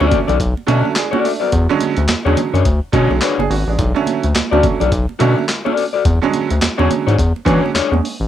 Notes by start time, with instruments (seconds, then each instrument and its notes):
0.00 analog synth bass D2, upright piano D3 F#3 A3 C#4, clean electric guitar F#4 A4 D5, muted conga
0.11 kick, closed hi-hat, high conga, low conga
0.28 analog synth bass B1, clean electric guitar F#4 A4 D5, closed hi-hat, low conga
0.40 analog synth bass B1, kick, closed hi-hat, muted conga
0.57 muted conga
0.67 analog synth bass B2, upright piano D3 F#3 A3 C#4, clean electric guitar F#4 A4 E5, closed hi-hat, high conga
0.85 high conga
0.96 upright piano D4 G#4, snare, clap, closed hi-hat, muted conga
1.11 upright piano C#4 F#4, clean electric guitar F#4 A4 D5, muted conga, high conga
1.24 upright piano A3 D4, open hi-hat
1.40 upright piano F#3 B3, clean electric guitar F#4 A4 D5
1.52 analog synth bass E2, kick, closed hi-hat, low conga
1.69 upright piano D3 F#3 G#3 C#4, muted conga
1.81 closed hi-hat, high conga
1.97 analog synth bass D2, closed hi-hat
2.08 analog synth bass E2, snare, clap, closed hi-hat, muted conga, high conga
2.25 analog synth bass E2, upright piano D3 F#3 G#3 C#4, clean electric guitar D4 G#4 C#5, muted conga
2.37 closed hi-hat, high conga, low conga
2.54 analog synth bass F#2, clean electric guitar D4 G#4 C#5, closed hi-hat, low conga
2.65 analog synth bass D2, kick, closed hi-hat
2.92 analog synth bass B2, upright piano D3 F#3 G#3 C#4, clean electric guitar D4 G#4 C#5, kick, closed hi-hat, high conga
3.10 analog synth bass B1, high conga
3.21 clean electric guitar D4 G#4 C#5, upright piano F#4 B4, snare, clap, closed hi-hat
3.38 analog synth bass F#1, upright piano D4 G#4, muted conga, high conga
3.50 analog synth bass G#1, upright piano C#4 F#4, open hi-hat
3.67 analog synth bass A1, upright piano G#3 D4
3.79 analog synth bass B1, kick, closed hi-hat, muted conga, low conga
3.94 upright piano D3 F#3 A3 C#4, muted conga
4.07 closed hi-hat, high conga
4.23 analog synth bass D2, closed hi-hat
4.35 analog synth bass D2, snare, clap, closed hi-hat, muted conga, high conga
4.51 analog synth bass D2, upright piano D3 F#3 A3 C#4, clean electric guitar F#4 A4 D5, muted conga
4.63 kick, closed hi-hat, high conga, low conga
4.80 analog synth bass B1, clean electric guitar F#4 A4 D5, closed hi-hat, low conga
4.92 analog synth bass B1, kick, closed hi-hat
5.09 muted conga
5.19 analog synth bass B2, upright piano D3 F#3 A3 C#4, clean electric guitar F#4 A4 E5, closed hi-hat, high conga
5.38 high conga
5.49 snare, clap, closed hi-hat, muted conga
5.65 upright piano A3 C#4, clean electric guitar F#4 A4 D5, high conga
5.76 upright piano A3 C#4, open hi-hat
5.93 clean electric guitar F#4 A4 D5
6.05 analog synth bass E2, kick, closed hi-hat, muted conga, low conga
6.22 upright piano D3 F#3 G#3 C#4, muted conga
6.33 closed hi-hat, high conga
6.50 analog synth bass D2, closed hi-hat
6.61 analog synth bass E2, snare, clap, closed hi-hat, muted conga, high conga
6.78 analog synth bass E2, upright piano D3 F#3 G#3 C#4, clean electric guitar D4 G#4 C#5, muted conga
6.90 closed hi-hat, high conga, low conga
7.07 analog synth bass G#2, clean electric guitar D4 G#4 C#5, closed hi-hat, low conga
7.19 analog synth bass E2, kick, closed hi-hat, muted conga
7.36 muted conga
7.45 upright piano D3 F#3 G#3 C#4, analog synth bass E3, clean electric guitar D4 G#4 C#5, kick, closed hi-hat, high conga
7.66 high conga
7.74 analog synth bass E2, clean electric guitar D4 G#4 C#5, snare, clap, closed hi-hat
7.90 analog synth bass E2, upright piano G#3 C#4, high conga
8.02 upright piano G#3 C#4, open hi-hat
8.20 analog synth bass A1